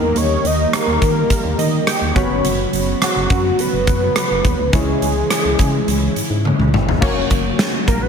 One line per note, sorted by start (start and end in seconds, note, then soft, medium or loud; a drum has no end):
0.00 0.12 E2 medium
0.00 0.69 D#3 medium
0.00 2.12 D#3 medium
0.00 2.14 G3 medium
0.00 2.11 A#3 medium
0.00 2.14 A#3 medium
0.00 2.12 D#4 medium
0.00 2.12 G4 medium
0.00 2.14 G4 medium
0.00 0.19 A#4 medium
0.00 1.58 D#5 medium
0.15 0.37 D#2 loud
0.15 0.48 C#5 loud
0.15 closed hi-hat medium
0.44 0.66 D#2 loud
0.44 0.77 D#5 loud
0.44 closed hi-hat medium
0.73 2.17 A#4 medium
0.73 cross-stick loud
0.73 closed hi-hat medium
0.87 0.98 D#2 loud
1.02 1.23 D#3 medium
1.02 kick medium
1.02 closed hi-hat medium
1.30 kick medium
1.30 closed hi-hat medium
1.44 1.55 D#2 medium
1.58 1.80 D#3 loud
1.58 1.86 D#5 medium
1.58 closed hi-hat medium
1.87 2.14 G5 medium
1.87 cross-stick loud
1.87 closed hi-hat medium
2.02 2.12 D#2 medium
2.15 2.27 F#1 medium
2.15 6.98 C#3 medium
2.15 4.71 F#3 medium
2.15 4.40 B3 medium
2.15 4.71 B3 medium
2.15 4.41 C#4 medium
2.15 4.71 F#4 medium
2.15 4.41 F#4 medium
2.15 4.41 C#5 medium
2.15 2.43 B5 medium
2.15 kick loud
2.15 closed hi-hat medium
2.30 2.41 G1 medium
2.44 2.66 F#1 loud
2.44 closed hi-hat medium
2.73 2.95 F#1 loud
2.73 closed hi-hat medium
3.02 3.62 F#4 medium
3.02 cross-stick loud
3.02 closed hi-hat medium
3.16 3.27 F#1 medium
3.30 3.52 F#2 loud
3.30 kick medium
3.30 closed hi-hat medium
3.59 4.76 B4 loud
3.59 closed hi-hat medium
3.73 3.89 F#1 medium
3.87 4.09 F#2 medium
3.87 kick medium
3.87 closed hi-hat medium
4.16 cross-stick loud
4.16 closed hi-hat medium
4.31 4.42 F#1 medium
4.45 4.55 D#2 medium
4.45 kick medium
4.45 closed hi-hat medium
4.59 4.70 D2 medium
4.72 4.95 C#2 loud
4.72 5.55 C#3 medium
4.72 6.99 E3 medium
4.72 6.97 G#3 medium
4.72 6.99 G#3 medium
4.72 6.98 C#4 medium
4.72 6.99 E4 medium
4.72 6.98 E4 medium
4.72 6.45 G#4 medium
4.72 6.98 C#5 medium
4.72 kick loud
4.72 closed hi-hat medium
5.02 5.23 C#2 medium
5.02 closed hi-hat medium
5.30 cross-stick loud
5.30 closed hi-hat medium
5.45 5.56 C#2 medium
5.59 5.80 C#3 loud
5.59 kick medium
5.59 closed hi-hat medium
5.88 6.09 C#2 medium
5.88 closed hi-hat medium
6.16 6.22 G#2 soft
6.16 closed hi-hat medium
6.30 6.52 G#2 medium
6.45 high tom medium
6.59 6.75 C#2 medium
6.59 mid tom medium
6.73 6.95 G1 medium
6.73 mid tom medium
6.89 floor tom medium
7.01 7.24 F#1 loud
7.01 8.09 C#3 medium
7.01 8.09 F#3 medium
7.01 8.09 A#3 medium
7.01 8.09 C#4 medium
7.01 8.09 F#4 medium
7.01 8.09 C#5 medium
7.01 kick loud
7.01 crash medium
7.30 7.52 F#1 medium
7.30 kick medium
7.30 closed hi-hat medium
7.59 snare loud
7.59 closed hi-hat medium
7.88 8.09 A#1 medium
7.88 8.04 A#4 medium
7.88 kick medium
7.88 closed hi-hat medium
8.02 8.09 B4 loud